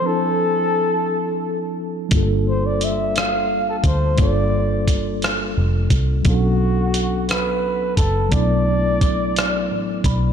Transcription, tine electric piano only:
\new Staff \with { instrumentName = "Tine electric piano" } { \time 6/8 \key g \major \tempo 4. = 58 << { r2. | r2. | r2. | r2. |
r2 d''8 b''8 | } \\ { <f c' d' e' a'>2. | <g bes d' f' a'>2. | <g bes d' f' a'>2. | <fis b cis' d' a'>2. |
<fis a b d' e'>2. | } >> }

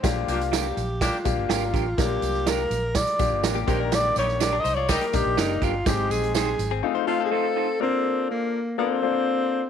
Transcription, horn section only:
\new Staff \with { instrumentName = "Horn section" } { \time 4/4 \key bes \major \tempo 4 = 124 r8 <bes d' g'>16 r4 r16 <bes d' g'>8 r4. | r1 | r8 <g ees' g'>16 r4 r16 <g ees' g'>8 r4. | r1 |
r1 | }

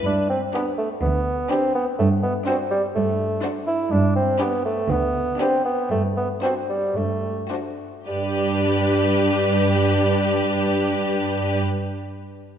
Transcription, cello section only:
\new Staff \with { instrumentName = "Cello section" } { \clef bass \time 4/4 \key g \major \tempo 4 = 117 g,4 r4 d,4 r4 | g,4 r4 g,4 r4 | g,4 r4 d,4 r4 | g,4 r4 g,4 r4 |
g,1~ | g,1 | }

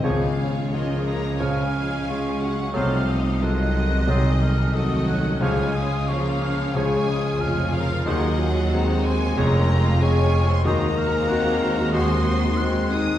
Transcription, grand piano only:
\new Staff \with { instrumentName = "Grand piano" } { \clef bass \time 4/4 \key des \major \tempo 4 = 91 <des, des>4 <aes f' aes'>4 <des, des>4 <aes f' aes'>4 | <c, c>4 <ges ees' a'>4 <c, c>4 <ges ees' a'>4 | <des, des>4 <f des' aes'>4 <des, des>4 <f des' aes'>4 | <ees, ees>4 <aes c' aes'>4 <f,, f,>4 <aes des' aes'>4 |
<ees, ees>4 <aes c' ges'>4 <ees, ees>4 <aes c' ges'>4 | }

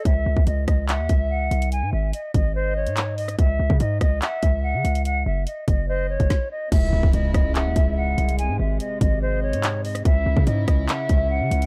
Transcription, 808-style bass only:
\new Staff \with { instrumentName = "808-style bass" } { \clef bass \time 4/4 \key cis \minor \tempo 4 = 144 cis,8 cis,16 cis,16 cis,8 cis,8. dis,16 cis,4 bis,,8~ | bis,,16 gis,16 gis,,8 r8 gis,,4~ gis,,16 gis,4~ gis,16 | cis,8 cis,16 cis16 gis,8 cis,8 r8 cis,8. cis16 cis,8~ | cis,8 fis,,8 r8 fis,,4~ fis,,16 fis,,16 r4 |
cis,8 cis,16 cis,16 cis,8 cis,8. dis,16 cis,4 bis,,8~ | bis,,16 gis,16 gis,,8 r8 gis,,4~ gis,,16 gis,4~ gis,16 | cis,8 cis,16 cis16 gis,8 cis,8 r8 cis,8. cis16 cis,8 | }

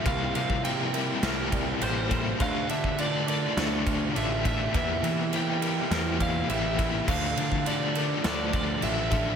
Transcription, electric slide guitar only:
\new Staff \with { instrumentName = "Electric slide guitar" } { \time 4/4 \key d \minor \tempo 4 = 103 f''8 f''8 g''2 c''4 | f''8 e''8 d''8 d''4. e''8 e''8 | e''4 g''4. f''8 e''4 | f''4 d''4 d''8 d''8 e''4 | }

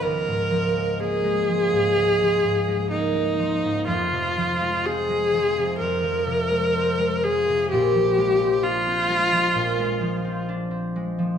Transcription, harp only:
\new Staff \with { instrumentName = "Harp" } { \clef bass \time 4/4 \key cis \mixolydian \tempo 4 = 63 <cis, eis gis b>16 gis,16 eis16 gis16 ais16 gis16 eis16 gis,16 cis,16 eis16 gis,16 gis16 ais16 gis16 eis16 gis,16 | <f,, f,>16 c16 f16 aes16 c'16 aes16 f16 c16 f,16 f16 c16 aes16 c'16 aes16 f16 c16 | <ais,, ais,>16 eis16 gis16 bis16 d'16 bis16 gis16 eis16 ais,16 gis16 eis16 bis16 d'16 bis16 gis16 eis16 | }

